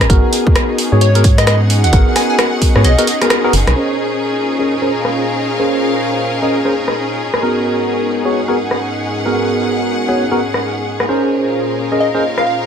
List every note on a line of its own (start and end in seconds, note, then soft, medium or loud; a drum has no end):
0.00 0.08 G#1 medium
0.00 3.72 B3 medium
0.00 12.66 C#4 medium
0.00 3.72 D#4 medium
0.00 12.66 D#4 medium
0.00 3.72 F#4 medium
0.00 12.66 G#4 medium
0.00 1.68 A#4 medium
0.00 cross-stick medium
0.00 closed hi-hat soft
0.10 0.21 G#1 loud
0.10 0.89 B3 medium
0.10 0.89 F#4 medium
0.10 0.89 G#4 medium
0.10 0.89 A#4 loud
0.10 kick loud
0.10 closed hi-hat medium
0.33 open hi-hat loud
0.47 kick loud
0.56 cross-stick loud
0.56 closed hi-hat medium
0.78 open hi-hat loud
0.92 1.85 G#2 medium
0.92 1.07 B3 medium
0.92 1.07 F#4 medium
0.92 1.07 G#4 medium
0.92 1.07 C#5 loud
1.01 1.36 C#5 loud
1.01 3.76 F#5 medium
1.01 closed hi-hat medium
1.15 1.23 B3 loud
1.15 1.23 F#4 medium
1.15 1.23 G#4 medium
1.15 1.23 A#4 loud
1.15 closed hi-hat medium
1.24 kick loud
1.24 open hi-hat loud
1.38 1.44 D#5 medium
1.38 cross-stick medium
1.38 closed hi-hat medium
1.47 1.56 D#5 medium
1.47 cross-stick loud
1.47 closed hi-hat medium
1.70 open hi-hat medium
1.84 1.91 D#2 medium
1.84 1.90 F#5 medium
1.84 closed hi-hat soft
1.93 2.04 G#1 loud
1.93 2.72 B3 medium
1.93 2.72 F#4 medium
1.93 2.72 G#4 medium
1.93 2.72 A#4 medium
1.93 2.02 F#5 medium
1.93 kick loud
1.93 closed hi-hat medium
2.16 2.25 G#5 medium
2.16 cross-stick medium
2.16 open hi-hat loud
2.30 2.36 G#5 medium
2.39 cross-stick loud
2.39 closed hi-hat medium
2.62 kick medium
2.62 open hi-hat loud
2.75 2.86 G#2 medium
2.75 2.90 B3 medium
2.75 2.90 F#4 medium
2.75 2.90 G#4 medium
2.75 2.90 C#5 loud
2.75 cross-stick medium
2.84 2.96 B1 medium
2.84 2.96 D#5 medium
2.84 closed hi-hat medium
2.98 3.06 B3 loud
2.98 3.06 F#4 medium
2.98 3.06 G#4 medium
2.98 3.06 A#4 loud
2.98 3.04 D#5 medium
2.98 closed hi-hat medium
3.07 3.16 D#5 medium
3.07 open hi-hat loud
3.21 3.41 B3 medium
3.21 3.41 F#4 medium
3.21 3.41 G#4 medium
3.21 3.41 A#4 medium
3.21 cross-stick medium
3.21 closed hi-hat medium
3.30 cross-stick loud
3.30 closed hi-hat medium
3.44 3.52 B3 loud
3.44 3.52 F#4 medium
3.44 3.52 G#4 medium
3.44 3.52 A#4 loud
3.53 3.64 F#1 medium
3.53 open hi-hat loud
3.67 3.74 B1 medium
3.67 cross-stick medium
3.67 closed hi-hat soft
3.76 7.16 A#2 medium
3.76 4.55 C#4 medium
3.76 7.16 C#4 medium
3.76 7.16 F4 medium
3.76 4.55 G#4 medium
3.76 7.16 G#4 medium
3.76 4.55 A#4 medium
3.76 8.29 A#4 medium
3.76 4.55 C5 medium
3.76 7.16 C5 medium
4.59 4.74 C#4 medium
4.59 4.74 G#4 medium
4.59 4.74 A#4 medium
4.59 4.74 D#5 medium
4.82 4.90 C#4 medium
4.82 4.90 G#4 medium
4.82 4.90 A#4 medium
4.82 4.90 C5 loud
4.86 7.20 F5 medium
5.05 cross-stick medium
5.59 6.39 C#4 medium
5.59 6.39 G#4 medium
5.59 6.39 A#4 medium
5.59 6.39 C5 medium
6.42 6.57 C#4 medium
6.42 6.57 G#4 medium
6.42 6.57 A#4 medium
6.42 6.57 D#5 medium
6.65 6.73 C#4 medium
6.65 6.73 G#4 medium
6.65 6.73 A#4 medium
6.65 6.73 C5 loud
6.88 cross-stick medium
7.20 11.05 G#2 medium
7.20 11.05 B3 medium
7.20 11.05 D#4 medium
7.20 9.01 F#4 medium
7.20 11.05 A#4 medium
7.34 cross-stick medium
7.42 8.22 B3 medium
7.42 8.22 F#4 medium
7.42 8.22 G#4 medium
7.42 8.22 A#4 medium
8.25 8.40 B3 medium
8.25 8.40 F#4 medium
8.25 8.40 G#4 medium
8.25 8.40 C#5 medium
8.25 11.09 F#5 medium
8.48 8.56 B3 medium
8.48 8.56 F#4 medium
8.48 8.56 G#4 medium
8.48 8.56 A#4 loud
8.71 cross-stick medium
9.03 11.07 G#4 medium
9.26 10.05 B3 medium
9.26 10.05 F#4 medium
9.26 10.05 G#4 medium
9.26 10.05 A#4 medium
10.08 10.23 B3 medium
10.08 10.23 F#4 medium
10.08 10.23 G#4 medium
10.08 10.23 C#5 medium
10.31 10.39 B3 medium
10.31 10.39 F#4 medium
10.31 10.39 G#4 medium
10.31 10.39 A#4 loud
10.54 cross-stick medium
11.00 cross-stick medium
11.09 12.66 A#2 medium
11.09 11.88 C#4 medium
11.09 12.66 C#4 medium
11.09 12.66 F4 medium
11.09 11.88 G#4 medium
11.09 12.66 G#4 medium
11.09 12.66 A#4 medium
11.09 11.88 A#4 medium
11.09 11.88 C5 medium
11.09 12.66 C5 medium
11.39 12.66 F5 medium
11.92 12.07 C#4 medium
11.92 12.07 G#4 medium
11.92 12.07 A#4 medium
11.92 12.07 D#5 medium
12.00 12.35 D#5 loud
12.14 12.22 C#4 medium
12.14 12.22 G#4 medium
12.14 12.22 A#4 medium
12.14 12.22 C5 loud
12.38 12.43 F5 medium
12.38 cross-stick medium
12.46 12.55 F5 medium